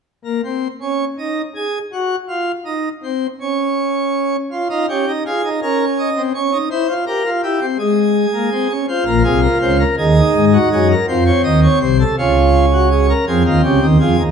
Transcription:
0.25 0.41 A#3 medium
0.44 0.68 C4 medium
0.81 1.05 C#4 medium
1.18 1.42 D#4 medium
1.55 1.78 G#4 medium
1.93 2.16 F#4 medium
2.29 2.52 F4 medium
2.65 2.89 D#4 medium
3.04 3.27 C4 medium
3.40 4.36 C#4 medium
4.52 4.68 F4 medium
4.70 4.86 D#4 medium
4.70 4.86 F4 medium
4.89 5.05 C#4 medium
4.89 5.12 G4 medium
5.08 5.23 D#4 medium
5.26 5.42 F4 medium
5.26 5.49 G#4 medium
5.45 5.60 D#4 medium
5.62 6.09 C#4 medium
5.62 5.85 A#4 medium
5.99 6.22 D#5 medium
6.16 6.32 C4 medium
6.34 6.50 C#4 medium
6.34 6.57 C#5 medium
6.53 6.69 D#4 medium
6.71 6.87 E4 medium
6.71 6.94 C5 medium
6.89 7.05 F4 medium
7.07 7.23 G4 medium
7.07 7.30 A#4 medium
7.25 7.41 F4 medium
7.43 7.59 E4 medium
7.43 7.66 G4 medium
7.61 7.77 C4 medium
7.79 8.26 G#3 medium
7.79 8.73 G#4 medium
8.34 8.49 A#3 medium
8.52 8.68 C4 medium
8.70 8.86 C#4 medium
8.88 9.82 F4 medium
8.88 9.04 C5 medium
9.07 9.22 A#1 medium
9.07 9.22 A#2 medium
9.07 9.22 A#4 medium
9.24 9.47 C2 medium
9.24 9.47 C3 medium
9.24 9.40 G#4 medium
9.42 9.58 A#4 medium
9.61 9.84 C#2 medium
9.61 9.84 C#3 medium
9.61 9.77 C5 medium
9.80 9.95 A#4 medium
9.98 10.20 D#2 medium
9.98 10.21 D#3 medium
9.98 10.92 D#4 medium
9.98 10.45 G#4 medium
10.35 10.57 G#2 medium
10.35 10.57 G#3 medium
10.53 10.69 F#4 medium
10.72 10.95 F#2 medium
10.72 10.95 F#3 medium
10.72 10.88 G#4 medium
10.91 11.06 A#4 medium
11.08 11.31 F2 medium
11.08 11.31 F3 medium
11.08 12.03 C4 medium
11.08 11.24 C5 medium
11.26 11.42 C#5 medium
11.44 11.67 D#2 medium
11.44 11.67 D#3 medium
11.44 11.60 D#5 medium
11.63 11.79 C#5 medium
11.81 12.04 C2 medium
11.81 12.04 C3 medium
11.81 11.97 C5 medium
12.00 12.15 A4 medium
12.18 13.12 C#2 medium
12.18 13.12 C#3 medium
12.18 13.12 C#4 medium
12.18 12.66 F4 medium
12.73 12.89 F#4 medium
12.91 13.07 G#4 medium
13.10 13.25 A#4 medium
13.27 13.43 F2 medium
13.27 13.43 F3 medium
13.27 14.22 C4 medium
13.27 13.43 G#4 medium
13.46 13.61 D#2 medium
13.46 13.61 D#3 medium
13.46 13.61 F4 medium
13.64 13.80 C#2 medium
13.64 13.80 C#3 medium
13.64 13.86 G4 medium
13.82 13.98 D#2 medium
13.82 13.98 D#3 medium
14.00 14.16 F2 medium
14.00 14.16 F3 medium
14.00 14.23 G#4 medium
14.19 14.31 D#2 medium
14.19 14.31 D#3 medium

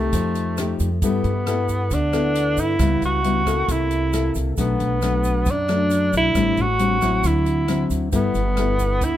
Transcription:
0.00 0.11 C3 medium
0.00 0.54 A3 medium
0.00 0.78 A3 medium
0.00 0.55 D#4 medium
0.00 0.55 G4 medium
0.13 0.76 F2 medium
0.13 1.00 F3 soft
0.13 kick medium
0.13 closed hi-hat soft
0.13 shaker medium
0.35 closed hi-hat soft
0.35 shaker soft
0.57 0.88 A3 soft
0.57 0.88 D#4 soft
0.57 0.88 G4 medium
0.57 cross-stick medium
0.57 closed hi-hat soft
0.57 shaker soft
0.79 1.01 F2 medium
0.79 kick soft
0.79 closed hi-hat soft
0.79 shaker medium
1.02 1.23 G2 medium
1.02 1.89 G3 soft
1.02 1.31 B3 medium
1.02 1.95 B3 medium
1.02 1.31 E4 soft
1.02 1.31 A4 medium
1.02 kick medium
1.02 closed hi-hat soft
1.02 shaker medium
1.24 1.87 G2 medium
1.24 closed hi-hat soft
1.24 shaker soft
1.47 1.91 B3 soft
1.47 1.91 E4 medium
1.47 1.91 A4 medium
1.47 cross-stick medium
1.47 closed hi-hat soft
1.47 shaker soft
1.69 kick soft
1.69 closed hi-hat soft
1.69 shaker medium
1.91 2.54 D2 medium
1.91 2.78 D3 soft
1.91 2.62 D4 medium
1.91 kick medium
1.91 closed hi-hat soft
1.91 shaker medium
2.13 2.76 B3 medium
2.13 2.76 E4 medium
2.13 2.76 A4 medium
2.13 cross-stick medium
2.13 closed hi-hat soft
2.13 shaker soft
2.35 closed hi-hat soft
2.57 2.78 G2 medium
2.57 3.03 E4 medium
2.57 kick soft
2.57 closed hi-hat soft
2.57 shaker medium
2.79 3.00 C#2 medium
2.79 3.66 C#3 medium
2.79 3.21 G3 soft
2.79 3.21 B3 medium
2.79 3.21 E4 medium
2.79 kick medium
2.79 cross-stick medium
2.79 closed hi-hat soft
2.79 shaker medium
3.02 3.64 C#2 medium
3.02 3.73 F#4 loud
3.02 closed hi-hat soft
3.02 shaker soft
3.24 3.43 G3 soft
3.24 3.43 B3 soft
3.24 3.43 E4 soft
3.24 closed hi-hat soft
3.46 4.09 A#3 medium
3.46 4.09 E4 soft
3.46 4.10 A4 medium
3.46 kick soft
3.46 cross-stick medium
3.46 closed hi-hat soft
3.46 shaker medium
3.68 4.31 C2 medium
3.68 4.55 C3 medium
3.68 4.37 E4 medium
3.68 kick soft
3.68 closed hi-hat soft
3.68 shaker medium
3.91 closed hi-hat soft
3.91 shaker soft
4.13 4.56 A#3 soft
4.13 4.56 E4 soft
4.13 4.56 A4 soft
4.13 cross-stick soft
4.13 closed hi-hat soft
4.13 shaker soft
4.35 4.56 C2 medium
4.35 kick soft
4.35 closed hi-hat soft
4.35 shaker medium
4.57 4.78 B1 medium
4.57 5.44 B2 medium
4.57 4.99 F#3 medium
4.57 4.99 A3 medium
4.57 5.52 B3 medium
4.57 4.99 D4 medium
4.57 kick medium
4.57 closed hi-hat soft
4.57 shaker medium
4.80 5.42 B1 medium
4.80 closed hi-hat soft
4.80 shaker soft
5.02 5.46 F#3 medium
5.02 5.46 A3 soft
5.02 5.47 D4 medium
5.02 cross-stick medium
5.02 closed hi-hat soft
5.02 shaker soft
5.24 kick soft
5.24 closed hi-hat soft
5.24 shaker medium
5.46 6.09 F#2 medium
5.46 6.33 F#2 soft
5.46 kick medium
5.46 closed hi-hat soft
5.46 shaker medium
5.51 6.15 D4 medium
5.68 6.32 F#3 medium
5.68 6.32 A3 medium
5.68 6.32 D4 medium
5.68 cross-stick medium
5.68 closed hi-hat soft
5.68 shaker soft
5.90 closed hi-hat soft
5.90 shaker soft
6.13 6.34 B1 medium
6.13 kick soft
6.13 closed hi-hat soft
6.13 shaker medium
6.18 6.63 E4 loud
6.35 6.56 A1 medium
6.35 7.22 A2 medium
6.35 6.64 G3 medium
6.35 6.64 C4 medium
6.35 6.64 D4 medium
6.35 kick medium
6.35 cross-stick medium
6.35 closed hi-hat soft
6.35 shaker medium
6.57 7.20 A1 medium
6.57 closed hi-hat soft
6.57 shaker soft
6.62 7.29 F#4 loud
6.79 6.98 G3 soft
6.79 6.98 C4 medium
6.79 6.99 D4 medium
6.79 closed hi-hat soft
6.79 shaker soft
7.01 7.64 F#3 medium
7.01 7.65 C4 medium
7.01 7.65 E4 medium
7.01 kick soft
7.01 cross-stick soft
7.01 closed hi-hat soft
7.01 shaker medium
7.24 7.87 D2 medium
7.24 8.11 D3 soft
7.24 7.92 E4 medium
7.24 kick medium
7.24 closed hi-hat soft
7.24 shaker medium
7.46 closed hi-hat soft
7.46 shaker soft
7.68 8.09 F#3 soft
7.68 8.10 C4 soft
7.68 8.10 E4 soft
7.68 cross-stick soft
7.68 closed hi-hat soft
7.90 8.11 D2 medium
7.90 kick soft
7.90 closed hi-hat soft
7.90 shaker medium
8.12 8.33 G1 medium
8.12 8.99 G3 medium
8.12 8.41 B3 medium
8.12 9.06 B3 medium
8.12 8.41 E4 medium
8.12 8.42 A4 medium
8.12 kick soft
8.12 closed hi-hat soft
8.12 shaker medium
8.34 8.97 G1 medium
8.34 closed hi-hat soft
8.34 shaker soft
8.57 9.02 B3 soft
8.57 9.02 E4 medium
8.57 9.02 A4 medium
8.57 cross-stick medium
8.57 closed hi-hat soft
8.79 kick soft
8.79 closed hi-hat soft
8.79 shaker medium
9.01 9.17 D2 medium
9.01 9.17 D3 soft
9.01 9.17 E4 medium
9.01 kick medium
9.01 closed hi-hat soft
9.01 shaker medium

